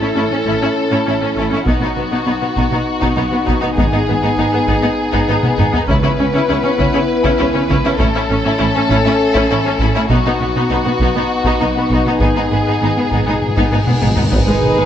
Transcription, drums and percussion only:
1.66 taiko medium
2.56 taiko medium
3.02 taiko medium
3.48 taiko medium
3.77 taiko medium
4.68 taiko medium
5.13 taiko medium
5.43 taiko mid medium
5.59 taiko low-mid medium
5.74 taiko low medium
5.89 taiko medium
6.79 taiko medium
7.24 taiko medium
7.70 taiko medium
8.00 taiko medium
8.90 taiko medium
9.35 taiko medium
9.79 taiko medium
10.09 taiko medium
11.00 taiko medium
11.44 taiko medium
11.90 taiko medium
12.20 taiko medium
13.11 taiko medium
13.57 taiko medium
13.87 taiko mid medium
14.02 taiko mid medium
14.17 taiko low medium
14.32 taiko medium
14.62 taiko mid medium

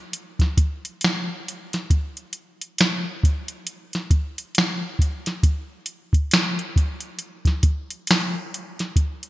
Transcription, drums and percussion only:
0.13 closed hi-hat medium
0.39 kick medium
0.39 snare soft
0.39 closed hi-hat soft
0.57 kick loud
0.57 closed hi-hat medium
0.85 closed hi-hat medium
1.01 finger snap medium
1.01 snare loud
1.01 closed hi-hat medium
1.48 closed hi-hat medium
1.73 snare soft
1.73 closed hi-hat soft
1.90 kick medium
1.90 closed hi-hat medium
2.17 closed hi-hat soft
2.33 closed hi-hat medium
2.61 closed hi-hat soft
2.78 finger snap medium
2.78 snare loud
2.78 closed hi-hat medium
3.23 kick loud
3.23 closed hi-hat medium
3.48 closed hi-hat soft
3.67 closed hi-hat medium
3.93 snare soft
3.93 closed hi-hat soft
4.11 kick loud
4.11 closed hi-hat medium
4.38 closed hi-hat medium
4.55 finger snap medium
4.55 snare loud
4.55 closed hi-hat medium
4.99 kick medium
4.99 closed hi-hat medium
5.26 snare soft
5.26 closed hi-hat soft
5.43 kick loud
5.43 closed hi-hat medium
5.86 closed hi-hat medium
6.13 kick medium
6.13 closed hi-hat soft
6.31 finger snap medium
6.31 snare loud
6.31 closed hi-hat medium
6.59 closed hi-hat soft
6.76 kick loud
6.76 closed hi-hat medium
7.00 closed hi-hat soft
7.19 closed hi-hat medium
7.45 kick medium
7.45 snare soft
7.45 closed hi-hat soft
7.63 kick loud
7.63 closed hi-hat medium
7.90 closed hi-hat medium
8.07 finger snap medium
8.07 snare loud
8.07 closed hi-hat medium
8.54 closed hi-hat medium
8.79 snare soft
8.79 closed hi-hat soft
8.96 kick loud
8.96 closed hi-hat medium
9.23 closed hi-hat soft

